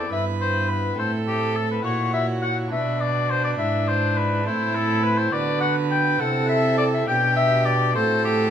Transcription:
0.00 0.12 D5 medium
0.07 0.93 B3 soft
0.07 0.94 E4 soft
0.07 0.95 B4 soft
0.11 0.96 G2 medium
0.11 0.94 G2 medium
0.11 0.97 B4 medium
0.11 0.25 E5 medium
0.41 0.71 C5 medium
0.69 0.98 B4 medium
0.94 1.83 A2 medium
0.94 1.80 C4 soft
0.94 1.79 E4 medium
0.94 1.82 A4 medium
0.94 1.83 A4 medium
0.99 1.81 A2 soft
0.99 1.12 C5 medium
1.28 1.57 G4 medium
1.56 1.70 A4 medium
1.71 1.84 B4 medium
1.81 2.67 E4 medium
1.81 2.67 F#4 soft
1.81 2.70 F#4 medium
1.81 2.69 C#5 soft
1.81 2.13 C#5 medium
1.85 2.68 A#2 medium
1.85 2.74 A#2 medium
2.14 2.27 E5 loud
2.42 2.56 F#5 loud
2.67 3.53 D4 soft
2.67 3.55 F#4 soft
2.67 3.56 B4 medium
2.72 3.56 B2 medium
2.72 3.59 B2 medium
2.72 4.49 D4 medium
2.72 3.02 E5 medium
3.01 3.32 D5 medium
3.30 3.44 C5 medium
3.45 3.51 D5 medium
3.55 4.42 D4 medium
3.55 4.42 E4 soft
3.55 4.43 B4 medium
3.55 3.89 E5 loud
3.59 4.43 G#2 medium
3.59 4.49 G#2 medium
3.88 4.19 C5 medium
4.17 4.46 B4 medium
4.42 5.29 C4 medium
4.42 5.29 E4 medium
4.42 5.30 A4 medium
4.46 5.30 A2 medium
4.46 5.33 A2 medium
4.46 5.32 E4 medium
4.46 4.76 C5 medium
4.75 5.05 A4 loud
5.03 5.19 B4 loud
5.18 5.34 C5 loud
5.29 6.16 B3 medium
5.29 6.17 F#4 medium
5.29 6.18 B4 medium
5.29 6.22 B4 medium
5.29 5.60 D5 loud
5.33 6.19 D3 medium
5.33 6.17 D3 medium
5.61 5.74 F#5 loud
5.91 6.21 G5 loud
6.17 7.04 C4 medium
6.17 7.05 E4 medium
6.17 7.06 A4 medium
6.17 7.07 A4 medium
6.17 6.48 F#5 loud
6.21 7.07 C3 medium
6.21 7.05 C3 medium
6.49 6.77 E5 loud
6.78 6.85 D5 loud
6.94 7.09 E5 loud
7.06 7.92 B2 medium
7.06 7.98 B2 medium
7.06 7.92 D4 medium
7.06 7.93 G4 medium
7.06 7.94 G4 medium
7.06 7.36 G5 loud
7.37 7.67 E5 loud
7.65 7.95 D5 loud
7.92 8.50 A2 medium
7.92 8.50 A3 medium
7.92 8.50 C4 medium
7.92 8.50 F#4 medium
7.92 8.50 A4 loud
7.92 8.24 C5 loud
7.97 8.50 A2 medium
8.25 8.50 G4 medium

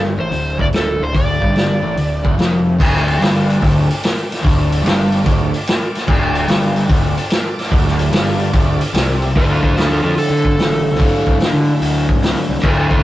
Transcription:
0.00 0.15 G1 medium
0.00 0.17 G2 medium
0.17 0.30 A1 medium
0.17 0.31 A2 medium
0.17 0.61 C5 medium
0.31 0.57 D1 medium
0.31 0.53 D2 medium
0.31 open hi-hat soft
0.58 0.72 D1 medium
0.58 0.71 D2 medium
0.58 0.66 D5 medium
0.58 kick medium
0.72 0.98 D1 medium
0.72 0.94 D2 medium
0.72 snare loud
0.72 open hi-hat soft
0.76 1.03 A4 medium
0.99 1.13 D1 medium
0.99 1.11 D2 medium
0.99 1.15 C5 medium
1.13 1.40 D1 medium
1.13 1.39 D2 medium
1.13 2.35 D5 medium
1.13 kick medium
1.13 open hi-hat soft
1.40 1.80 G1 medium
1.40 1.81 G2 medium
1.40 kick medium
1.55 snare medium
1.55 open hi-hat soft
1.82 1.95 A1 medium
1.82 1.96 A2 medium
1.96 2.22 D1 medium
1.96 2.19 D2 medium
1.96 open hi-hat soft
2.23 2.36 D1 medium
2.23 2.37 D2 medium
2.23 kick medium
2.37 2.76 F1 medium
2.37 2.78 F2 loud
2.37 snare loud
2.37 open hi-hat soft
2.78 3.18 D1 medium
2.78 3.19 D2 loud
2.78 2.93 A#3 medium
2.78 2.93 D#4 medium
2.78 2.93 F#4 medium
2.78 2.93 D#5 medium
2.78 kick loud
2.78 crash loud
2.93 6.05 A3 medium
2.93 6.04 D4 medium
2.93 6.04 F4 medium
2.93 6.04 D5 medium
2.93 snare soft
3.08 open hi-hat medium
3.19 3.58 G1 medium
3.19 3.60 G2 loud
3.19 open hi-hat medium
3.23 snare loud
3.50 open hi-hat medium
3.60 3.87 D1 medium
3.60 3.87 D2 loud
3.60 kick loud
3.60 open hi-hat medium
3.90 open hi-hat medium
4.03 snare loud
4.03 open hi-hat medium
4.32 snare soft
4.32 open hi-hat medium
4.42 4.82 D1 loud
4.42 4.83 D2 loud
4.42 kick loud
4.42 open hi-hat medium
4.72 open hi-hat medium
4.83 5.22 G1 loud
4.83 5.24 G2 loud
4.83 open hi-hat medium
4.87 snare loud
5.12 open hi-hat medium
5.24 5.51 D1 medium
5.24 5.51 D2 loud
5.24 kick loud
5.24 open hi-hat medium
5.54 open hi-hat medium
5.67 snare loud
5.67 open hi-hat medium
5.95 snare soft
5.95 open hi-hat medium
6.07 6.46 D1 loud
6.07 6.47 D2 loud
6.07 9.32 D4 medium
6.07 9.33 F4 medium
6.07 9.32 A4 medium
6.07 9.32 D5 medium
6.07 kick loud
6.07 crash medium
6.35 open hi-hat medium
6.48 6.86 G1 medium
6.48 6.89 G2 loud
6.48 snare loud
6.48 open hi-hat medium
6.76 open hi-hat medium
6.89 7.15 D1 medium
6.89 7.16 D2 loud
6.89 kick loud
6.89 open hi-hat medium
7.18 open hi-hat medium
7.30 snare loud
7.30 open hi-hat medium
7.59 snare soft
7.59 open hi-hat medium
7.70 8.09 D1 loud
7.70 8.11 D2 loud
7.70 kick loud
7.70 open hi-hat medium
7.87 snare soft
7.99 open hi-hat medium
8.12 8.50 G1 medium
8.12 8.52 G2 loud
8.12 snare loud
8.12 open hi-hat medium
8.39 open hi-hat medium
8.54 8.79 D1 medium
8.54 8.80 D2 loud
8.54 kick loud
8.54 open hi-hat medium
8.81 open hi-hat medium
8.93 9.32 C2 medium
8.93 9.33 C3 loud
8.93 snare loud
8.93 open hi-hat medium
9.22 open hi-hat medium
9.34 10.97 D2 medium
9.34 9.60 D2 medium
9.34 10.98 A2 medium
9.34 11.00 D3 medium
9.34 9.48 A4 medium
9.34 9.49 C5 loud
9.34 kick medium
9.34 open hi-hat medium
9.49 9.62 A4 medium
9.49 9.63 C5 medium
9.63 9.76 A4 medium
9.63 9.76 C5 medium
9.63 kick medium
9.70 10.00 D2 medium
9.77 9.90 F4 medium
9.77 9.90 A4 medium
9.77 snare loud
9.77 open hi-hat medium
9.91 10.03 F4 medium
9.91 10.02 A4 medium
10.03 10.15 F2 medium
10.03 10.16 F4 medium
10.03 10.17 A4 medium
10.18 11.37 A4 medium
10.18 open hi-hat medium
10.30 10.55 D3 medium
10.45 kick medium
10.57 10.88 A1 medium
10.57 snare loud
10.57 open hi-hat medium
10.92 11.10 C2 medium
10.92 snare soft
10.98 12.62 D2 medium
10.98 12.62 A2 medium
10.98 12.65 D3 medium
10.98 kick loud
10.98 open hi-hat medium
11.27 11.39 C2 medium
11.27 kick medium
11.40 snare loud
11.40 open hi-hat medium
11.53 11.72 D3 medium
11.81 12.05 D2 medium
11.81 open hi-hat medium
12.09 kick medium
12.16 12.34 C2 medium
12.23 snare loud
12.23 open hi-hat medium
12.49 12.55 C2 medium
12.59 13.03 D2 medium
12.59 snare soft
12.63 12.88 D2 medium
12.63 13.03 A2 medium
12.63 13.03 D3 medium
12.63 12.77 A4 medium
12.63 12.77 C5 medium
12.63 kick loud
12.63 crash medium
12.79 12.89 A4 medium
12.79 12.90 C5 medium
12.90 13.03 A4 medium
12.90 13.03 C5 medium
12.90 kick medium
12.98 13.03 D2 medium

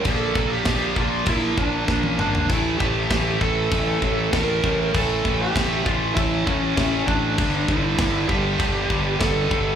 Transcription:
0.04 0.35 A#1 medium
0.04 0.35 A#2 medium
0.04 0.36 F3 loud
0.04 0.36 A#3 loud
0.04 0.53 A4 loud
0.04 kick loud
0.04 crash medium
0.35 0.65 A#1 loud
0.35 0.65 A#2 medium
0.35 0.65 F3 medium
0.35 0.66 A#3 loud
0.35 kick loud
0.50 0.98 G4 loud
0.65 0.95 A#1 medium
0.65 0.95 A#2 medium
0.65 0.96 F3 loud
0.65 0.97 A#3 loud
0.65 kick loud
0.65 snare loud
0.65 crash medium
0.96 1.26 A#1 loud
0.96 1.24 A#2 medium
0.96 1.25 F3 loud
0.96 1.26 A#3 medium
0.96 1.29 F4 medium
0.96 kick medium
1.25 1.56 A#1 loud
1.25 1.55 A#2 medium
1.25 1.57 F3 medium
1.25 1.57 A#3 loud
1.25 kick loud
1.25 crash medium
1.29 1.57 E4 medium
1.57 1.87 A#1 loud
1.57 1.86 A#2 loud
1.57 1.88 F3 loud
1.57 1.88 A#3 loud
1.57 2.02 D4 loud
1.57 kick medium
1.88 2.18 A#1 medium
1.88 2.18 A#2 medium
1.88 2.18 F3 medium
1.88 2.19 A#3 medium
1.88 kick loud
1.88 snare medium
2.02 2.17 C#4 loud
2.02 high tom medium
2.18 2.48 G#1 medium
2.18 2.48 A#2 medium
2.18 2.48 F3 medium
2.18 2.48 A#3 loud
2.18 2.47 D4 medium
2.18 mid tom loud
2.35 floor tom loud
2.49 2.79 A1 medium
2.49 2.80 A2 loud
2.49 2.81 E3 loud
2.49 2.82 A3 loud
2.49 2.78 E4 loud
2.49 kick loud
2.49 crash medium
2.78 3.10 A1 loud
2.78 3.10 A2 medium
2.78 3.11 E3 loud
2.78 3.12 A3 medium
2.78 3.36 G4 loud
2.78 kick loud
3.10 3.40 A1 medium
3.10 3.41 A2 medium
3.10 3.42 E3 loud
3.10 3.43 A3 loud
3.10 kick loud
3.10 snare loud
3.10 crash medium
3.41 3.70 A1 medium
3.41 3.70 A2 medium
3.41 3.71 E3 medium
3.41 3.71 A3 loud
3.41 4.29 A4 loud
3.41 kick medium
3.71 4.01 A1 loud
3.71 4.00 A2 medium
3.71 4.02 E3 medium
3.71 4.02 A3 loud
3.71 kick loud
3.71 crash medium
4.01 4.31 A1 loud
4.01 4.32 A2 loud
4.01 4.32 E3 loud
4.01 4.33 A3 loud
4.01 kick medium
4.33 4.62 A1 medium
4.33 4.62 A2 loud
4.33 4.63 E3 medium
4.33 4.63 A3 loud
4.33 4.90 A#4 loud
4.33 kick loud
4.33 snare loud
4.33 crash medium
4.63 4.93 A1 medium
4.63 4.93 A2 medium
4.63 4.94 E3 loud
4.63 4.94 A3 loud
4.63 kick loud
4.94 5.23 A1 medium
4.94 5.25 A2 loud
4.94 5.25 E3 loud
4.94 5.25 A3 loud
4.94 5.42 A4 loud
4.94 kick loud
4.94 crash medium
5.25 5.54 A1 loud
5.25 5.55 A2 medium
5.25 5.57 E3 loud
5.25 5.57 A3 medium
5.25 kick medium
5.41 5.85 G4 loud
5.55 5.84 A1 medium
5.55 5.86 A2 medium
5.55 5.87 E3 medium
5.55 5.87 A3 loud
5.55 kick loud
5.55 snare loud
5.55 crash medium
5.86 6.15 A1 medium
5.86 6.15 A2 medium
5.86 6.16 E3 loud
5.86 6.17 A3 loud
5.86 6.14 F4 medium
5.86 kick loud
6.14 6.45 A1 loud
6.14 6.46 A2 medium
6.14 6.46 E3 loud
6.14 6.47 A3 loud
6.14 6.47 E4 medium
6.14 kick loud
6.14 crash medium
6.44 6.76 A1 medium
6.44 6.74 A2 loud
6.44 7.06 C#4 medium
6.44 kick medium
6.48 6.75 A2 loud
6.48 6.76 E3 loud
6.48 6.76 A3 loud
6.76 7.06 A1 medium
6.76 7.05 A2 medium
6.76 7.06 E3 medium
6.76 7.07 A3 loud
6.76 kick loud
6.76 snare loud
6.76 crash medium
7.07 7.36 A1 loud
7.07 7.36 A2 loud
7.07 7.36 E3 loud
7.07 7.36 A3 loud
7.07 7.70 D4 medium
7.07 kick loud
7.37 7.67 G1 medium
7.37 7.66 G2 medium
7.37 7.67 D3 loud
7.37 7.67 G3 loud
7.37 kick loud
7.37 crash medium
7.67 7.97 G1 loud
7.67 7.96 G2 medium
7.67 7.97 D3 medium
7.67 7.98 G3 loud
7.67 8.28 E4 loud
7.67 kick loud
7.97 8.28 G1 loud
7.97 8.27 G2 medium
7.97 8.28 D3 loud
7.97 8.28 G3 medium
7.97 kick loud
7.97 snare loud
7.97 crash medium
8.28 8.58 G1 medium
8.28 8.58 G2 loud
8.28 8.59 D3 loud
8.28 8.60 G3 loud
8.28 9.23 G4 loud
8.28 kick medium
8.59 8.89 G1 loud
8.59 8.89 G2 medium
8.59 8.89 D3 loud
8.59 8.90 G3 medium
8.59 kick loud
8.59 crash medium
8.90 9.19 G1 medium
8.90 9.19 G2 loud
8.90 9.20 D3 loud
8.90 9.20 G3 loud
8.90 kick medium
9.20 9.50 G1 medium
9.20 9.50 G2 medium
9.20 9.52 D3 medium
9.20 9.52 G3 loud
9.20 9.75 A4 loud
9.20 kick loud
9.20 snare loud
9.20 crash medium
9.51 9.75 G1 medium
9.51 9.75 G2 medium
9.51 9.75 D3 medium
9.51 9.75 G3 loud
9.51 kick medium

